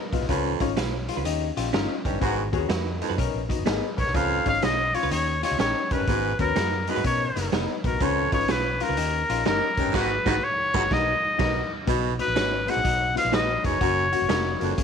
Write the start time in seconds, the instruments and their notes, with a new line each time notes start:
0.12 fingered electric bass A#1, upright piano B3 D#4 F4, hollow-body jazz guitar B3, kick, closed hi-hat
0.21 fingered electric bass B1, snare
0.29 fingered electric bass C#2, baritone saxophone F2, upright piano C#4 F4 B4, hollow-body jazz guitar C#4, kick, closed hi-hat
0.60 fingered electric bass G#1, upright piano C#4 F4 C#5, hollow-body jazz guitar D#4, kick, closed hi-hat
0.77 fingered electric bass B1, clean electric guitar C#4 F4 B4, upright piano F4, snare, closed hi-hat
1.08 hollow-body jazz guitar F4, upright piano G#4 F5, closed hi-hat
1.16 fingered electric bass C#2, clean electric guitar C#4 F4 B4
1.25 fingered electric bass D#2, upright piano C#4 D#4 G4, hollow-body jazz guitar D#4, closed hi-hat
1.56 fingered electric bass A#1, upright piano C#4 D#4 G4, hollow-body jazz guitar F4, snare, closed hi-hat
1.73 fingered electric bass G1, upright piano C#4 D#4 F4, clean electric guitar C#4 G4 A#4, hollow-body jazz guitar D#4, snare, closed hi-hat
2.05 fingered electric bass F1, baritone saxophone G2, upright piano C#4 D#4 G4, hollow-body jazz guitar C#4, kick, closed hi-hat
2.13 fingered electric bass G1
2.20 fingered electric bass G#1, baritone saxophone G#2, horn section D#3 B3 F#4, upright piano B3 F#4 G#4, hollow-body jazz guitar B3, kick, closed hi-hat
2.52 fingered electric bass D#2, upright piano B3 F#4 G#4, hollow-body jazz guitar C#4, kick, closed hi-hat
2.69 fingered electric bass F2, clean electric guitar D#4 F#4 B4, upright piano F#4 D#5, snare, closed hi-hat
3.01 baritone saxophone F2, hollow-body jazz guitar D#4, upright piano D#4 B4, closed hi-hat
3.09 fingered electric bass F#2, clean electric guitar D#4 F#4 B4
3.17 fingered electric bass B1, upright piano B3 D#4 A#4, hollow-body jazz guitar C#4, kick, closed hi-hat
3.34 fingered electric bass A#1
3.48 upright piano B3 D#4 F#4, hollow-body jazz guitar D#4, kick, closed hi-hat
3.59 fingered electric bass F#1
3.65 fingered electric bass G#1, upright piano B3 D#4 G#4, clean electric guitar B3 D#4 A#4, snare, closed hi-hat
3.96 fingered electric bass A#1, upright piano B3 D#4 A#4, hollow-body jazz guitar B3, trumpet C#5, kick, closed hi-hat
4.07 fingered electric bass B1, snare
4.13 fingered electric bass C#2, baritone saxophone F2, upright piano C#4 F4 B4, hollow-body jazz guitar C#4, trumpet F5, kick, closed hi-hat
4.45 fingered electric bass G#1, upright piano C#4 F4 C#5, hollow-body jazz guitar D#4, trumpet F5, kick, closed hi-hat
4.55 closed hi-hat
4.62 fingered electric bass B1, upright piano C#4 F4 B4, clean electric guitar C#4 F4 B4, trumpet D#5, snare, closed hi-hat
4.94 upright piano C#4 F4 C#5, hollow-body jazz guitar F4, trumpet C#5, closed hi-hat
5.03 fingered electric bass C#2, clean electric guitar C#4 F4 B4, closed hi-hat
5.11 fingered electric bass D#2, upright piano C#4 D#4 G4, hollow-body jazz guitar D#4, trumpet C#5, closed hi-hat
5.42 upright piano C#4 D#4 G4, hollow-body jazz guitar F4, trumpet C#5, snare, closed hi-hat
5.51 fingered electric bass C#2
5.59 fingered electric bass A#1, upright piano C#4 D#4 G4, clean electric guitar C#4 G4 A#4, hollow-body jazz guitar D#4, trumpet C#5, snare, closed hi-hat
5.90 fingered electric bass F1, baritone saxophone G2, upright piano C#4 D#4 A#4, hollow-body jazz guitar C#4, trumpet B4, kick, closed hi-hat
6.00 fingered electric bass G1
6.07 fingered electric bass G#1, baritone saxophone G#2, upright piano B3 F#4 G#4, hollow-body jazz guitar B3, kick, closed hi-hat
6.39 fingered electric bass D#2, upright piano B3 F#4 B4, hollow-body jazz guitar C#4, trumpet A#4, kick, closed hi-hat
6.56 fingered electric bass F#2, upright piano B3 F#4 G#4, clean electric guitar D#4 F#4 B4, snare, closed hi-hat
6.87 baritone saxophone F#2, upright piano B3 F#4 G#4, hollow-body jazz guitar D#4, trumpet B4, closed hi-hat
6.96 fingered electric bass G#2, clean electric guitar D#4 F#4 B4, closed hi-hat
7.04 fingered electric bass B2, upright piano B3 D#4 A#4, hollow-body jazz guitar C#4, trumpet C#5, kick, closed hi-hat
7.36 fingered electric bass F#1, upright piano B3 D#4 A#4, hollow-body jazz guitar D#4, snare, closed hi-hat
7.52 fingered electric bass F1, clean electric guitar B3 D#4 A#4, upright piano B3 D#4 B4, snare, closed hi-hat
7.84 fingered electric bass A#1, hollow-body jazz guitar B3, upright piano B3 D#4 F#4, trumpet A#4, kick, closed hi-hat
7.93 fingered electric bass B1
8.00 fingered electric bass C#2, baritone saxophone F2, upright piano C#4 F4 B4, hollow-body jazz guitar C#4, trumpet C#5, kick, closed hi-hat
8.32 fingered electric bass G#1, upright piano C#4 F4 B4, hollow-body jazz guitar D#4, trumpet C#5, kick, closed hi-hat
8.41 closed hi-hat
8.48 fingered electric bass B1, clean electric guitar C#4 F4 B4, upright piano C#4 F4 C#5, trumpet B4, snare, closed hi-hat
8.80 upright piano C#4 F4 A#4, hollow-body jazz guitar F4, trumpet A#4, closed hi-hat
8.89 fingered electric bass C#2, clean electric guitar C#4 F4 B4
8.97 fingered electric bass D#2, upright piano C#4 D#4 G4, hollow-body jazz guitar D#4, closed hi-hat
9.28 fingered electric bass A#1, upright piano C#4 D#4 G4, hollow-body jazz guitar F4, closed hi-hat
9.45 fingered electric bass G1, upright piano C#4 D#4 A#4, clean electric guitar C#4 G4 A#4, hollow-body jazz guitar D#4, trumpet A#4, snare, closed hi-hat
9.77 fingered electric bass F1, baritone saxophone G2, upright piano C#4 D#4 G4, hollow-body jazz guitar C#4, kick, closed hi-hat
9.86 fingered electric bass G1
9.93 fingered electric bass G#1, baritone saxophone G#2, horn section D#3 B3 F#4, upright piano B3 F#4 G#4, clean electric guitar D#4 F#4 B4, trumpet B4, kick, snare, crash
10.25 fingered electric bass G#1, baritone saxophone G#2, horn section D#3 B3 F#4, upright piano B3 F#4 G#4, clean electric guitar D#4 F#4 B4, kick, snare
10.44 trumpet C#5
10.74 fingered electric bass G#1, baritone saxophone F#2, horn section D#3 B3 F#4, upright piano B3 F#4 G#4, clean electric guitar D#4 F#4 B4, kick, snare
10.91 fingered electric bass B1, upright piano B3 D#4 A#4, clean electric guitar D#4 F#4 A#4, trumpet D#5, kick, snare
11.38 fingered electric bass B1, upright piano B3 D#4 A#4, clean electric guitar D#4 F#4 A#4, kick, snare, crash
11.87 fingered electric bass B1, baritone saxophone B2, upright piano B3 D#4 F#4, hollow-body jazz guitar B3, kick, closed hi-hat
12.19 upright piano B3 D#4 F#4, hollow-body jazz guitar D#4, trumpet B4, closed hi-hat
12.28 fingered electric bass A#1
12.36 fingered electric bass G#1, upright piano B3 D#4 F#4, hollow-body jazz guitar C#4, clean electric guitar D#4 F#4 B4, snare, closed hi-hat
12.67 baritone saxophone G#2, upright piano B3 D#4 F#4, hollow-body jazz guitar B3, trumpet F#5, closed hi-hat
12.76 fingered electric bass A#1
12.83 fingered electric bass B1, upright piano B3 D#4 F#4, hollow-body jazz guitar D#4, kick, closed hi-hat
13.15 upright piano B3 D#4 F4, trumpet F5, snare, closed hi-hat
13.25 fingered electric bass A#1
13.31 upright piano B3 D#4 F#4, clean electric guitar D#4 F#4 B4, trumpet D#5, snare, closed hi-hat
13.62 fingered electric bass F1, baritone saxophone F#2, upright piano B3 D#4 G#4, hollow-body jazz guitar D#4, trumpet C#5, kick, closed hi-hat
13.80 fingered electric bass F#1, baritone saxophone F#2, upright piano A#3 C#4 F#4, hollow-body jazz guitar F#4, kick, closed hi-hat
14.11 upright piano A#3 C#4 F#4, hollow-body jazz guitar F#4, closed hi-hat
14.22 fingered electric bass F#1
14.28 fingered electric bass F1, upright piano A#3 C#4 F#4, clean electric guitar C#4 F#4 A#4, hollow-body jazz guitar D#4, snare, closed hi-hat
14.59 fingered electric bass F#1, baritone saxophone F2, upright piano A#3 C#4 F#4, closed hi-hat
14.77 fingered electric bass G#1, upright piano A#3 C#4 G#4, kick, closed hi-hat